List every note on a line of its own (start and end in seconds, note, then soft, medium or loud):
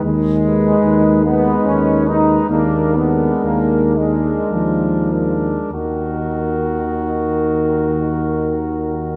0.04 0.75 D#2 medium
0.04 1.22 G#3 medium
0.45 1.22 G#3 soft
0.45 1.22 D#4 soft
0.45 1.23 B4 soft
0.84 1.55 D#2 medium
1.24 2.05 G#3 soft
1.24 1.65 B3 medium
1.24 2.06 D#4 soft
1.24 2.05 B4 soft
1.65 2.40 D#2 soft
1.65 2.07 C#4 medium
2.06 2.49 G#3 soft
2.06 2.50 D#4 medium
2.06 2.50 D#4 soft
2.06 2.48 B4 soft
2.50 3.32 D#2 soft
2.50 2.95 G#3 soft
2.50 2.94 A#3 medium
2.50 2.95 D4 soft
2.50 2.95 A#4 soft
2.95 3.94 G#3 soft
2.95 3.44 B3 medium
2.95 3.95 D4 soft
2.95 3.94 A#4 soft
3.45 4.38 D#2 soft
3.45 3.95 A#3 medium
3.95 4.52 G#3 soft
3.95 5.09 G#3 soft
3.95 5.10 D4 soft
3.95 5.08 A#4 soft
4.51 5.58 D#2 soft
4.51 5.54 F3 soft
5.11 5.71 G#3 soft
5.11 5.72 D4 soft
5.11 5.71 A#4 soft
5.71 9.16 D#2 soft
5.71 9.16 D#3 soft
5.71 9.16 F#4 soft
5.71 9.16 A#4 soft